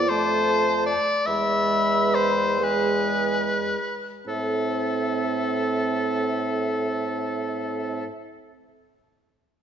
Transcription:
Already playing: bassoon F2, clarinet F4, oboe D5, flute D6
0.09 french horn A3, clarinet A4, oboe C5, flute A5
0.86 oboe D5
1.26 bassoon E2, french horn G#3, clarinet B4, oboe E5, flute B5
2.15 oboe C5
2.61 french horn G#3, clarinet G#4, oboe B4, flute G#5
4.26 bassoon A2, french horn C4, clarinet A4, oboe A4, flute E5

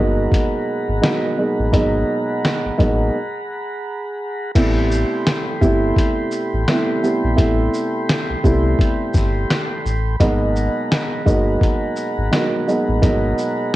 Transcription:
Already playing: sub bass G1, grand piano B2 F#3 G#3 A#3 D#4, tonewheel organ G#4 F#5 A#5 B5
0.32 kick, closed hi-hat
0.88 sub bass G#1
1.01 grand piano B2 F#3 G#3 A#3 D#4, cross-stick, snare, closed hi-hat
1.38 grand piano B2 F#3 G#3 A#3 D#4
1.59 sub bass A1
1.72 sub bass G#1, grand piano B2 F#3 G#3 A#3 D#4, kick, closed hi-hat
2.45 cross-stick, snare, closed hi-hat
2.65 sub bass A1
2.78 sub bass A1, grand piano B2 F#3 G#3 A#3 D#4, kick, closed hi-hat
4.55 sub bass A1, grand piano C3 G3 A3 B3 E4, tonewheel organ A4 G5 C6, kick, closed hi-hat, crash
4.91 shaker
5.27 cross-stick, snare, closed hi-hat
5.61 sub bass G1, grand piano C3 G3 A3 B3 E4, kick, shaker
5.96 kick, closed hi-hat
6.31 shaker
6.53 sub bass A1
6.68 grand piano C3 G3 A3 B3 E4, cross-stick, snare, closed hi-hat
7.03 grand piano C3 G3 A3 B3 E4, shaker
7.24 sub bass A#1
7.36 sub bass A1, grand piano C3 G3 A3 B3 E4, kick, closed hi-hat
7.74 shaker
8.09 cross-stick, snare, closed hi-hat
8.30 sub bass C2
8.43 sub bass C2, grand piano C3 G3 A3 B3 E4, kick, shaker
8.79 kick, closed hi-hat
9.14 sub bass G1, kick, snare, shaker
9.50 cross-stick, snare, closed hi-hat
9.85 sub bass A1, shaker
10.20 sub bass G#1, grand piano B2 F#3 G#3 A#3 D#4, tonewheel organ G#4 F#5 A#5, kick, closed hi-hat
10.56 shaker
10.92 cross-stick, snare, closed hi-hat
11.25 sub bass G1, grand piano B2 F#3 G#3 A#3 D#4, kick, shaker
11.61 kick, closed hi-hat
11.96 shaker
12.18 sub bass G#1
12.31 grand piano B2 F#3 G#3 A#3 D#4, cross-stick, snare, closed hi-hat
12.67 grand piano B2 F#3 G#3 A#3 D#4, shaker
12.88 sub bass A1
13.02 sub bass G#1, grand piano B2 F#3 G#3 A#3 D#4, kick, closed hi-hat
13.38 shaker

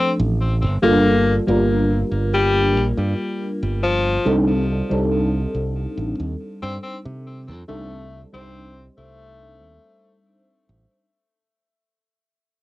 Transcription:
Already playing: fm electric piano F3 A3 C4 D4 A4, alto saxophone C4
0.20 fingered electric bass A1
0.63 fingered electric bass G1
0.82 fingered electric bass G1, fm electric piano G3 A#3 D4 F4 A4, alto saxophone A#3
1.47 fingered electric bass G1, fm electric piano G3 A#3 D4 F4 A#4
2.12 fingered electric bass G1
2.34 alto saxophone G3
2.77 fingered electric bass A#1
2.97 fingered electric bass G2
3.63 fingered electric bass G1
3.83 alto saxophone F3
4.25 fingered electric bass C2, fm electric piano G3 C4 D4 D#4 A4
4.89 fingered electric bass C2, fm electric piano G3 C4 D4 D#4 A4
5.55 fingered electric bass C2
5.97 fingered electric bass A1
6.20 fingered electric bass D#2
6.63 fingered electric bass G2, alto saxophone C4
6.83 alto saxophone C4
7.05 fingered electric bass C3
7.48 fingered electric bass F2
7.68 fingered electric bass C2, fm electric piano G3 C4 D4 D#4 A4, alto saxophone A3
8.32 fingered electric bass C2, fm electric piano G3 C4 D4 D#4 C5, alto saxophone C4
8.97 fingered electric bass C2, alto saxophone A3
9.63 fingered electric bass D#2
10.69 fingered electric bass A1

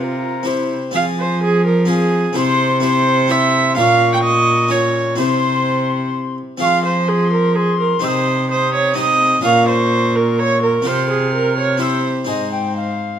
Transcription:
Already playing: harpsichord C3 C4 F4 G4, cello C3, viola F4
0.03 recorder A#4
0.43 harpsichord C4 E4 G4, recorder C5
0.48 viola E4
0.91 cello F3, harpsichord F3 C4 F4 G#4, recorder G#5
0.95 viola F5
1.20 viola C5
1.44 viola G#4
1.66 viola A#4
1.85 harpsichord C4 F4 G#4
1.90 viola G#4, recorder G#5
2.33 cello C3, harpsichord C3 C4 E4 G4, recorder C6
2.37 viola C5
2.80 harpsichord C4 E4 G4, viola C5, recorder C6
3.28 harpsichord C4 E4 G4, viola E5, recorder C6
3.75 cello A#2, harpsichord A#2 C#4 F4 A#4, viola F5, recorder D6
3.81 recorder C#6
4.13 viola G5
4.23 viola D#5
4.68 harpsichord C#4 F4 A#4, viola C#5, recorder C#6
5.16 cello C3, harpsichord C3 C4 E4 G4, viola C5
5.20 recorder C6
6.58 harpsichord F3 C4 F4 G#4, viola F5, recorder C#6
6.62 cello F3, recorder C6
6.85 viola C5
7.08 viola G#4
7.33 viola A#4
7.55 viola G#4, recorder C6
7.80 viola A#4
7.99 cello C3, harpsichord C3 C4 D#4 G4, viola C5
8.04 recorder D#6 E6
8.50 viola C5, recorder D#6
8.74 viola C#5
8.94 harpsichord C4 D#4 G4, viola D#5, recorder D#6
9.41 cello A#2, harpsichord C#4 F4 A#4, viola F5
9.45 harpsichord A#2, recorder C#6
9.68 viola C5
10.16 viola A#4
10.39 viola C#5, recorder C#6
10.63 viola A#4
10.82 cello C3, harpsichord C4 F4 G4
10.86 harpsichord C3, viola C5, recorder F6
11.10 viola G#4
11.34 viola A#4
11.58 viola C#5
11.77 harpsichord C4 E4 G4, viola C5, recorder E6
12.25 cello G#2, harpsichord G#2 C4 D#4 G#4, recorder D#5
12.29 viola C5
12.51 recorder G5
12.76 recorder F5

